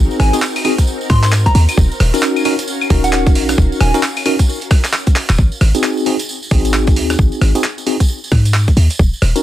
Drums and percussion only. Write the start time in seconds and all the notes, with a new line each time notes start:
0.11 tambourine
0.20 cross-stick, open hi-hat
0.33 closed hi-hat, tambourine
0.42 clap, tambourine
0.56 open hi-hat, tambourine, claves
0.65 open hi-hat, claves
0.78 kick, closed hi-hat, tambourine
0.87 tambourine
1.01 tambourine
1.10 kick, cross-stick, open hi-hat
1.24 clap, closed hi-hat, tambourine
1.32 clap, tambourine
1.46 kick, closed hi-hat, tambourine
1.55 open hi-hat
1.69 closed hi-hat, tambourine, claves
1.77 kick, tambourine
1.92 tambourine
2.00 cross-stick, open hi-hat
2.14 closed hi-hat, tambourine
2.23 clap, tambourine
2.36 tambourine, claves
2.45 open hi-hat, claves
2.59 closed hi-hat, tambourine
2.68 tambourine
2.81 tambourine, claves
2.90 kick, open hi-hat
3.04 closed hi-hat, tambourine
3.13 clap, tambourine
3.27 kick, closed hi-hat, tambourine
3.35 open hi-hat
3.49 cross-stick, closed hi-hat, tambourine
3.58 kick, tambourine
3.72 tambourine
3.81 cross-stick, open hi-hat
3.94 closed hi-hat, tambourine
4.03 clap, tambourine
4.16 open hi-hat, tambourine, claves
4.26 open hi-hat, claves
4.39 kick, closed hi-hat, tambourine
4.49 tambourine
4.61 closed hi-hat, tambourine
4.71 kick, cross-stick, open hi-hat
4.84 clap, closed hi-hat, tambourine
4.93 clap, tambourine
5.07 kick, closed hi-hat, tambourine
5.16 clap, open hi-hat
5.29 clap, closed hi-hat, tambourine, claves
5.38 kick, tambourine
5.52 tambourine
5.61 cross-stick, open hi-hat
5.75 closed hi-hat, tambourine
5.83 clap, tambourine
5.97 tambourine
6.06 open hi-hat
6.19 closed hi-hat, tambourine
6.29 tambourine
6.43 tambourine
6.51 kick, open hi-hat
6.65 closed hi-hat, tambourine
6.73 clap, tambourine
6.87 kick, closed hi-hat, tambourine
6.96 open hi-hat
7.10 cross-stick, closed hi-hat, tambourine
7.19 kick, tambourine
7.32 tambourine
7.41 cross-stick, open hi-hat
7.55 closed hi-hat, tambourine
7.63 clap, tambourine
7.78 tambourine
7.87 open hi-hat
8.00 kick, closed hi-hat, tambourine
8.09 tambourine
8.24 tambourine
8.32 kick, cross-stick, open hi-hat
8.45 closed hi-hat, tambourine
8.54 clap, tambourine
8.68 kick, closed hi-hat, tambourine
8.77 open hi-hat
8.90 closed hi-hat, tambourine
8.99 kick, tambourine
9.13 tambourine
9.22 cross-stick, open hi-hat
9.36 closed hi-hat, tambourine